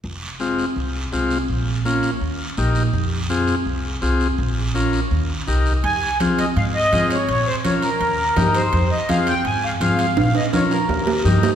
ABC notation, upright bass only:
X:1
M:4/4
L:1/8
Q:1/4=166
K:Fm
V:1 name="Upright bass" clef=bass
F,,,4 C,,2 C,,2 | B,,,4 E,,2 B,,,2 | F,,4 C,,2 C,,2 | B,,,4 E,,2 C,,2 |
F,, z3 A,,2 A,,2 | B,,, z3 E,,2 G,,2 | F,, z3 A,,2 A,,2 | B,,, z3 E,,2 G,,2 |]